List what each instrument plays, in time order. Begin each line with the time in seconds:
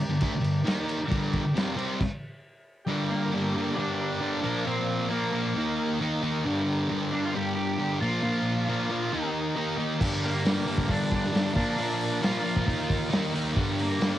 Already playing: transistor combo organ G4 A#4 D5
0.09 distorted electric guitar G2 D3
0.21 distorted electric guitar D3 A3, kick, crash
0.32 muted distorted electric guitar stroke
0.40 distorted electric guitar G2 D3
0.44 crash
0.64 distorted electric guitar D#3 A#3 D#4, crash
0.68 snare
0.89 crash
0.97 muted distorted electric guitar stroke
1.08 distorted electric guitar G2 D3 G3, kick, crash
1.33 kick, crash
1.44 distorted electric guitar G2 D3
1.54 distorted electric guitar F2 C3 F3, snare, crash
1.76 distorted electric guitar C3 G3 C4, crash
2.00 kick, crash
2.85 distorted electric guitar G2 D3 G3, transistor combo organ G4 A#4 D5
3.10 electric slide guitar A#3
3.32 distorted electric guitar G2 D3 G3
3.55 distorted electric guitar G2 D3 G3
3.75 distorted electric guitar G2 D3 G3, electric slide guitar D4
3.95 electric slide guitar D4
4.21 distorted electric guitar G2 D3 G3
4.42 distorted electric guitar A#2 F3 A#3, transistor combo organ F4 A#4 D5
4.66 distorted electric guitar A#2 F3 A#3, electric slide guitar C4
5.10 distorted electric guitar A#2 F3 A#3, electric slide guitar A#3
5.32 distorted electric guitar A#2 F3 A#3
5.55 distorted electric guitar D#3 A#3 D#4, transistor combo organ D#4 G4 A#4
6.00 distorted electric guitar D#3 A#3 D#4
6.23 distorted electric guitar D#3 A#3 D#4
6.43 distorted electric guitar G2 D3 G3, transistor combo organ D4 G4 A#4
6.89 distorted electric guitar G2 D3 G3
7.12 distorted electric guitar G2 D3 G3, electric slide guitar D4
7.25 electric slide guitar F4
7.35 distorted electric guitar G2 D3 G3, electric slide guitar G4
7.55 electric slide guitar G4
7.78 distorted electric guitar G2 D3 G3
8.01 distorted electric guitar A#2 F3 A#3, transistor combo organ D4 F4 A#4, electric slide guitar F4
8.23 distorted electric guitar A#2 F3 A#3
8.68 distorted electric guitar A#2 F3 A#3
8.90 distorted electric guitar A#2 F3 A#3
9.11 distorted electric guitar D#3 A#3 D#4, transistor combo organ D#4 G4 A#4
9.56 distorted electric guitar D#3 A#3 D#4
9.77 distorted electric guitar D#3 A#3 D#4
9.98 distorted electric guitar G2, transistor combo organ D4 G4 A#4, kick, crash
10.02 distorted electric guitar D3 G3
10.24 electric slide guitar A#3, open hi-hat
10.45 distorted electric guitar G2 D3 G3, snare, open hi-hat
10.66 distorted electric guitar G2 D3 G3, open hi-hat
10.78 kick
10.87 distorted electric guitar G2 D3 G3, kick, open hi-hat
10.91 electric slide guitar D4
11.12 electric slide guitar D4, kick, open hi-hat
11.24 snare
11.32 distorted electric guitar G2 D3 G3, snare, open hi-hat
11.53 distorted electric guitar A#2 F3 A#3, transistor combo organ D4 F4 A#4, electric slide guitar D4, kick
11.57 open hi-hat
11.78 distorted electric guitar A#2 F3 A#3, open hi-hat
12.01 open hi-hat
12.21 distorted electric guitar A#2 F3 A#3, electric slide guitar F4, snare, open hi-hat
12.43 distorted electric guitar A#2 F3 A#3, open hi-hat
12.56 kick
12.66 distorted electric guitar D#3 A#3 D#4, transistor combo organ D#4 G4 A#4, kick, open hi-hat
12.90 kick, open hi-hat
13.10 distorted electric guitar D#3 A#3 D#4, snare, open hi-hat
13.33 distorted electric guitar D#3 A#3 D#4, open hi-hat
13.52 distorted electric guitar G2, transistor combo organ D4 G4 A#4
13.56 distorted electric guitar D3 G3, kick, open hi-hat
13.79 electric slide guitar A#3, open hi-hat
14.00 distorted electric guitar G2 D3 G3, snare, open hi-hat